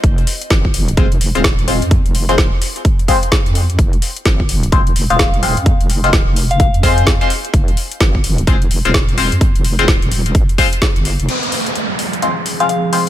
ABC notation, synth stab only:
X:1
M:4/4
L:1/16
Q:"Swing 16ths" 1/4=128
K:Fm
V:1 name="Synth stab"
z8 [A,CFc] z2 [A,CFc] z2 [A,CFc] z | z3 [A,CFc] z6 [A,CFc] z4 z | z8 [A,CFc] z2 [A,CFc] z2 [A,CFc] z | z3 [A,CFc] z6 [A,CFc]3 [A,CFc] z2 |
z8 [A,CFc] z2 [A,CFc] z2 [A,CFc] z | z3 [A,CFc] z6 [A,CFc] z4 z | z8 [A,CFc] z2 [A,CFc] z2 [A,CFc] z |]